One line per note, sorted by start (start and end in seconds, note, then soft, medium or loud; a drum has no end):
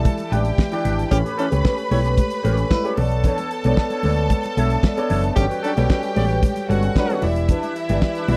0.00 0.31 E3 medium
0.00 0.32 E4 medium
0.00 0.32 G4 medium
0.00 0.29 A4 medium
0.00 0.33 D5 medium
0.00 0.29 A5 medium
0.05 muted clean electric guitar stroke soft
0.05 kick loud
0.05 closed hi-hat medium
0.05 muted conga soft
0.05 high conga medium
0.18 muted clean electric guitar stroke soft
0.18 closed hi-hat soft
0.18 muted conga soft
0.30 0.50 A1 medium
0.30 0.60 E3 medium
0.30 0.50 D4 medium
0.30 0.60 E4 medium
0.30 0.45 G4 medium
0.30 1.10 G4 medium
0.30 0.61 G4 medium
0.30 0.44 B4 medium
0.30 0.61 D5 medium
0.30 1.10 G5 medium
0.30 closed hi-hat medium
0.30 high conga medium
0.45 muted clean electric guitar stroke soft
0.45 closed hi-hat soft
0.58 muted clean electric guitar stroke soft
0.58 kick loud
0.58 snare medium
0.58 high conga medium
0.72 1.00 E3 medium
0.72 0.82 D4 medium
0.72 1.01 E4 medium
0.72 0.83 G4 medium
0.72 1.01 G4 medium
0.72 0.84 B4 medium
0.72 1.01 D5 medium
0.72 closed hi-hat soft
0.84 1.03 G#1 medium
0.84 1.03 D4 medium
0.84 0.98 G4 medium
0.84 0.97 B4 medium
0.84 closed hi-hat medium
0.84 low conga medium
0.98 muted clean electric guitar stroke medium
0.98 closed hi-hat medium
1.11 1.21 A1 loud
1.11 1.20 E3 medium
1.11 1.40 A3 medium
1.11 1.20 C#4 loud
1.11 1.40 G4 medium
1.11 1.20 G4 loud
1.11 2.94 B4 medium
1.11 1.40 B4 medium
1.11 1.40 C#5 medium
1.11 2.94 B5 medium
1.11 muted clean electric guitar stroke soft
1.11 kick loud
1.11 closed hi-hat medium
1.11 muted conga soft
1.11 low conga medium
1.24 1.35 C#4 medium
1.24 1.36 G4 medium
1.24 1.37 B4 medium
1.24 closed hi-hat soft
1.36 1.47 E3 medium
1.36 1.52 C#4 medium
1.36 1.47 C#4 medium
1.36 1.52 G4 medium
1.36 1.47 A4 medium
1.36 1.50 B4 medium
1.36 closed hi-hat medium
1.51 1.61 C#2 medium
1.51 1.80 A3 medium
1.51 1.80 G4 medium
1.51 1.80 B4 medium
1.51 1.81 C#5 medium
1.51 muted clean electric guitar stroke soft
1.51 closed hi-hat medium
1.51 high conga medium
1.63 1.82 C#4 medium
1.63 1.78 G4 medium
1.63 1.77 B4 loud
1.63 kick loud
1.63 snare loud
1.78 muted clean electric guitar stroke soft
1.78 closed hi-hat soft
1.90 2.19 B1 medium
1.90 2.00 G3 medium
1.90 2.29 A3 medium
1.90 2.00 E4 medium
1.90 2.30 G4 medium
1.90 2.30 B4 medium
1.90 2.00 C#5 medium
1.90 2.30 C#5 medium
1.90 muted clean electric guitar stroke soft
1.90 open hi-hat medium
1.90 high conga medium
2.04 2.19 C#4 soft
2.04 2.19 G4 soft
2.04 2.18 B4 medium
2.04 closed hi-hat soft
2.17 kick loud
2.17 closed hi-hat medium
2.17 high conga medium
2.30 muted clean electric guitar stroke soft
2.30 closed hi-hat soft
2.43 2.63 A1 medium
2.43 2.72 A3 medium
2.43 2.64 C#4 medium
2.43 2.58 G4 medium
2.43 2.73 G4 medium
2.43 2.73 B4 medium
2.43 2.57 B4 medium
2.43 2.73 C#5 medium
2.43 closed hi-hat medium
2.43 high conga medium
2.57 muted clean electric guitar stroke medium
2.57 closed hi-hat soft
2.71 2.92 G3 medium
2.71 2.92 E4 medium
2.71 2.92 B4 loud
2.71 kick loud
2.71 snare loud
2.71 high conga medium
2.84 2.97 A3 medium
2.84 2.97 C#4 medium
2.84 2.97 G4 medium
2.84 2.98 G4 medium
2.84 2.98 B4 medium
2.84 2.97 B4 medium
2.84 2.96 C#5 medium
2.84 closed hi-hat soft
2.97 3.26 B1 medium
2.97 3.50 B3 medium
2.97 3.50 A4 medium
2.97 5.33 A4 medium
2.97 3.51 C#5 medium
2.97 3.51 D5 medium
2.97 5.32 A5 loud
2.97 muted clean electric guitar stroke soft
2.97 open hi-hat medium
2.97 low conga medium
3.11 muted clean electric guitar stroke medium
3.11 closed hi-hat medium
3.24 3.49 D4 medium
3.24 3.49 A4 medium
3.24 3.50 C#5 medium
3.24 kick loud
3.24 closed hi-hat medium
3.24 muted conga soft
3.24 low conga medium
3.38 closed hi-hat soft
3.38 muted conga soft
3.51 muted clean electric guitar stroke soft
3.51 closed hi-hat medium
3.64 3.73 B1 medium
3.64 3.93 B3 medium
3.64 3.77 D4 soft
3.64 3.93 A4 medium
3.64 3.78 A4 medium
3.64 3.78 C#5 medium
3.64 3.93 C#5 medium
3.64 3.93 D5 medium
3.64 closed hi-hat medium
3.64 high conga medium
3.77 muted clean electric guitar stroke soft
3.77 kick loud
3.77 snare loud
3.90 4.02 D4 medium
3.90 4.03 A4 medium
3.90 4.04 C#5 medium
3.90 closed hi-hat soft
3.90 muted conga soft
4.03 4.32 D2 medium
4.03 4.42 B3 medium
4.03 4.18 D4 medium
4.03 4.42 A4 medium
4.03 4.18 A4 medium
4.03 4.43 C#5 medium
4.03 4.17 C#5 medium
4.03 4.43 D5 medium
4.03 open hi-hat medium
4.03 high conga medium
4.16 muted clean electric guitar stroke soft
4.16 closed hi-hat soft
4.30 muted clean electric guitar stroke soft
4.30 kick loud
4.30 closed hi-hat medium
4.30 muted conga soft
4.30 high conga medium
4.43 muted clean electric guitar stroke soft
4.43 closed hi-hat soft
4.43 muted conga soft
4.57 4.75 B1 medium
4.57 4.85 B3 medium
4.57 4.76 D4 medium
4.57 4.85 A4 medium
4.57 4.71 A4 medium
4.57 4.86 C#5 medium
4.57 4.70 C#5 medium
4.57 4.86 E5 medium
4.57 closed hi-hat medium
4.57 high conga medium
4.70 muted clean electric guitar stroke soft
4.70 closed hi-hat soft
4.83 4.97 D5 medium
4.83 muted clean electric guitar stroke soft
4.83 kick loud
4.83 snare loud
4.83 muted conga soft
4.83 high conga medium
4.97 5.25 B3 medium
4.97 5.08 D4 soft
4.97 5.26 A4 medium
4.97 5.09 A4 medium
4.97 5.09 C#5 medium
4.97 5.26 C#5 medium
4.97 5.26 D5 loud
4.97 closed hi-hat soft
4.97 muted conga soft
5.09 5.29 F#1 medium
5.09 5.28 D4 medium
5.09 5.24 A4 medium
5.09 5.23 C#5 medium
5.09 5.34 E5 medium
5.09 open hi-hat medium
5.09 low conga medium
5.24 muted clean electric guitar stroke soft
5.24 closed hi-hat soft
5.36 5.46 G1 loud
5.36 5.45 D3 loud
5.36 5.64 G3 medium
5.36 5.45 C#4 medium
5.36 5.64 F#4 medium
5.36 5.45 G4 loud
5.36 6.67 G4 medium
5.36 5.65 A4 medium
5.36 5.65 B4 medium
5.36 5.65 C#5 medium
5.36 6.67 G5 medium
5.36 muted clean electric guitar stroke soft
5.36 kick loud
5.36 closed hi-hat medium
5.36 low conga medium
5.50 5.62 C#4 medium
5.50 5.63 F#4 medium
5.50 5.63 B4 medium
5.50 closed hi-hat soft
5.63 5.72 F#3 medium
5.63 5.78 C#4 medium
5.63 5.72 D4 medium
5.63 5.77 F#4 medium
5.63 5.72 A4 medium
5.63 5.76 B4 medium
5.63 closed hi-hat medium
5.76 5.86 B1 medium
5.76 6.05 G3 medium
5.76 6.05 F#4 medium
5.76 6.05 A4 medium
5.76 6.06 B4 medium
5.76 6.06 C#5 loud
5.76 muted clean electric guitar stroke soft
5.76 closed hi-hat medium
5.76 high conga medium
5.89 6.08 C#4 medium
5.89 6.04 F#4 medium
5.89 6.03 B4 medium
5.89 kick loud
5.89 snare loud
5.89 muted conga soft
6.03 muted clean electric guitar stroke soft
6.03 closed hi-hat soft
6.03 muted conga soft
6.15 6.45 A1 medium
6.15 6.54 G3 medium
6.15 6.25 B3 medium
6.15 6.54 G4 medium
6.15 6.54 A4 medium
6.15 6.25 A4 medium
6.15 6.55 B4 medium
6.15 6.55 C#5 medium
6.15 6.25 D5 medium
6.15 muted clean electric guitar stroke soft
6.15 open hi-hat medium
6.15 high conga medium
6.30 6.45 C#4 medium
6.30 6.44 F#4 medium
6.30 6.44 B4 medium
6.30 closed hi-hat soft
6.43 kick loud
6.43 closed hi-hat medium
6.43 muted conga soft
6.43 high conga medium
6.56 muted clean electric guitar stroke soft
6.56 closed hi-hat soft
6.56 muted conga soft
6.68 6.88 G1 medium
6.68 6.97 G3 medium
6.68 6.88 C#4 medium
6.68 6.97 F#4 medium
6.68 6.83 F#4 medium
6.68 7.22 F#4 medium
6.68 6.97 A4 medium
6.68 6.98 B4 medium
6.68 6.82 B4 medium
6.68 6.98 C#5 medium
6.68 7.22 F#5 medium
6.68 closed hi-hat medium
6.68 high conga medium
6.83 muted clean electric guitar stroke medium
6.83 closed hi-hat soft
6.96 7.17 F#3 medium
6.96 7.17 D4 medium
6.96 7.17 B4 medium
6.96 muted clean electric guitar stroke soft
6.96 kick loud
6.96 snare loud
6.96 muted conga soft
6.96 high conga medium
7.09 7.22 G3 medium
7.09 7.22 C#4 medium
7.09 7.22 F#4 medium
7.09 7.23 F#4 medium
7.09 7.22 A4 medium
7.09 7.23 B4 medium
7.09 7.23 C#5 medium
7.09 closed hi-hat soft
7.09 muted conga soft
7.22 7.51 E1 medium
7.22 7.75 E3 medium
7.22 8.37 E4 medium
7.22 7.76 E4 medium
7.22 7.76 G4 medium
7.22 7.76 D5 loud
7.22 8.37 E5 medium
7.22 muted clean electric guitar stroke soft
7.22 open hi-hat medium
7.22 low conga medium
7.36 muted clean electric guitar stroke soft
7.36 closed hi-hat soft
7.49 7.74 D4 medium
7.49 7.74 G4 medium
7.49 7.75 B4 loud
7.49 kick loud
7.49 closed hi-hat medium
7.49 muted conga soft
7.49 low conga medium
7.63 closed hi-hat soft
7.63 muted conga soft
7.76 muted clean electric guitar stroke medium
7.76 closed hi-hat medium
7.89 7.98 G1 medium
7.89 8.17 E3 medium
7.89 8.02 D4 soft
7.89 8.18 E4 medium
7.89 8.18 G4 medium
7.89 8.03 G4 medium
7.89 8.03 B4 medium
7.89 8.18 D5 medium
7.89 closed hi-hat medium
7.89 high conga medium
8.02 muted clean electric guitar stroke soft
8.02 kick loud
8.02 snare loud
8.15 8.28 D4 medium
8.15 8.29 G4 medium
8.15 8.30 B4 medium
8.15 closed hi-hat soft
8.28 8.37 B1 medium
8.28 8.37 E3 medium
8.28 8.37 D4 medium
8.28 8.37 E4 medium
8.28 8.36 F#4 medium
8.28 8.37 G4 medium
8.28 8.37 B4 medium
8.28 8.37 D5 loud
8.28 open hi-hat medium
8.28 high conga medium